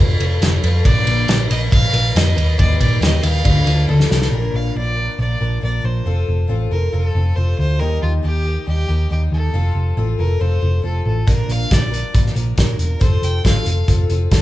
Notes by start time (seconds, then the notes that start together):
Already playing: F1 F3 C4 F4 A4
0.20 F1 C4 F4 A4, ride
0.41 F1 F3 C4 F4 A4, snare, ride
0.63 F2 C4 F4 A4, ride
0.85 A#1 A#2 D3 F3 A#3 D4 A#4 D5, kick, ride
1.07 A#1, ride
1.28 A#1 F3 A#3 D4 A#4, snare, ride
1.51 A#1 D#5, ride
1.72 A#1 F5, kick, ride
1.93 A#1 F3 A#3 D4 A#4, ride
2.14 F2 F3 A#3 D4 A#4 D#5, snare, ride
2.35 D#2 A#3 D#4 A#4, ride
2.58 D#2 D#3 G3 A#3 D#4 A#4 D5, kick, ride
2.80 A#2 D5, kick, ride
3.00 D#2 G3 A#3 D#4 A#4 D#5, snare, ride
3.23 D#2 F5, ride
3.44 D2 D3 F3 D4 F4 A4, kick, ride
3.66 D2 D4 F4 A4, ride
3.87 D2 F3 D4 F4 A4, high tom
4.00 snare
4.08 C2 D4 F4 A4, snare
4.22 snare
4.31 A#1 A#2 D3 F3 A#3 D4 A#4
4.54 A#1 F5
4.74 A#1 F3 A#3 D4 A#4
4.78 D5
4.96 F3 A#3 D4 A#4
5.19 A#1 F3 A#3 D4 A#4 D5
5.41 A#1 F3 A#3 D4 A#4
5.61 A#1 F3 A#3 D4 A#4 D5
5.84 A#1 C5
6.06 F1 F3 C4 F4 A4
6.28 F1
6.48 A1 F3 C4 F4 A4
6.70 F1 C4 F4 A4 A#4
6.92 F1 F3 C4 F4 A4
7.14 F1 C4 F4 A4
7.36 F1 F3 C4 F4 A4 C5
7.59 D2 C5
7.79 D#2 D#3 G3 A#3 D#4 G4 A#4
8.02 D#2 F4
8.22 D#2 G3 A#3 D#4 G4
8.45 A#3 D#4 G4
8.67 D#2 G3 A#3 D#4 G4
8.88 D#2 A#3 D#4 G4
9.10 D#2 G3 A#3 D#4 G4
9.32 D#2 A4
9.54 F1 F3 C4 F4 A4
9.75 F1
9.97 A1 F3 C4 F4 A4
10.19 F1 C4 F4 A4 A#4
10.39 F1 F3 C4 F4 A4 C5
10.61 F1 C4 F4 A4
10.82 F1 F3 C4 F4 A4
11.06 A1 A4
11.27 A#1 A#2 D3 F3 A#3 D4 A#4, kick, closed hi-hat
11.48 A#1 F5, closed hi-hat
11.70 A#1 F3 A#3 D4 A#4 D5, kick, snare, closed hi-hat
11.91 F3 A#3 D4 A#4, closed hi-hat
12.13 A#1 F3 A#3 D4 A#4, kick, closed hi-hat
12.26 snare
12.35 A#1 F3 A#3 D4 A#4, closed hi-hat
12.55 A#1 F3 A#3 D4 A#4, kick, snare, closed hi-hat
12.78 E1 A#4, closed hi-hat
12.99 F1 F3 C4 F4 A4 C5, kick, closed hi-hat
13.22 F1 G5, closed hi-hat
13.43 A1 F3 C4 F4 A4 F5, kick, snare, closed hi-hat
13.65 F1 C4 F4 A4, closed hi-hat
13.86 F1 F3 C4 F4 A4, kick, closed hi-hat
14.09 F1 C4 F4 A4, closed hi-hat
14.31 F1 F3 C4 F4 A4, kick, snare, closed hi-hat